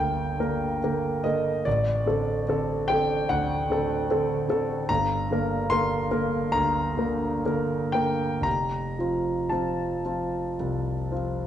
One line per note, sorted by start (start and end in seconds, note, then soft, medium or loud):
0.00 1.69 G1 soft
0.00 0.38 D2 soft
0.00 0.40 D3 soft
0.00 0.40 A#3 soft
0.00 0.40 A#4 soft
0.00 1.25 G5 medium
0.00 1.69 A5 medium
0.40 0.79 D3 soft
0.40 0.79 A#3 soft
0.40 0.79 A#4 soft
0.84 1.22 D3 soft
0.84 1.23 A#3 soft
0.84 1.22 A#4 soft
1.24 1.62 D3 soft
1.24 1.63 A#3 soft
1.24 1.63 A#4 soft
1.24 1.66 D#5 medium
1.65 2.06 A1 medium
1.65 2.88 D5 medium
2.06 2.43 D3 soft
2.06 2.44 C4 soft
2.06 2.44 A4 soft
2.48 2.86 D3 soft
2.48 2.85 C4 soft
2.48 2.86 A4 soft
2.88 3.26 D3 soft
2.88 3.27 C4 soft
2.88 3.26 A4 soft
2.88 3.29 G5 medium
3.29 3.68 D2 medium
3.29 4.89 F#5 medium
3.70 4.05 D3 soft
3.70 4.06 C4 soft
3.70 4.06 A4 soft
4.10 4.46 D3 soft
4.10 4.46 C4 soft
4.10 4.46 A4 soft
4.49 4.85 D3 soft
4.49 4.86 C4 soft
4.49 4.86 A4 soft
4.89 5.28 G1 medium
4.89 5.69 A#5 medium
5.31 5.66 D3 soft
5.31 5.67 A#3 soft
5.31 5.67 A#4 soft
5.70 6.07 D3 soft
5.70 6.08 A#3 soft
5.70 6.08 A#4 soft
5.70 6.54 C6 medium
6.11 6.50 D3 soft
6.11 6.50 A#3 soft
6.11 6.50 A#4 soft
6.52 6.98 D2 medium
6.52 7.94 A#5 medium
6.97 7.41 D3 soft
6.97 7.42 A#3 soft
6.97 7.42 A#4 soft
7.45 7.90 D3 soft
7.45 7.90 A#3 soft
7.45 7.90 A#4 soft
7.92 8.42 D3 soft
7.92 8.42 A#3 soft
7.92 8.42 A#4 soft
7.92 8.44 G5 medium
8.41 8.95 F1 soft
8.41 9.51 A#5 medium
8.99 9.48 F3 soft
8.99 9.49 C4 soft
8.99 9.49 F4 soft
9.50 10.01 F3 soft
9.50 10.02 C4 soft
9.50 10.02 F4 soft
9.50 11.47 A5 medium
10.05 10.55 F3 soft
10.05 10.55 C4 soft
10.05 10.55 F4 soft
10.60 11.11 C2 soft
11.12 11.47 F3 soft
11.12 11.47 C4 soft
11.12 11.47 F4 soft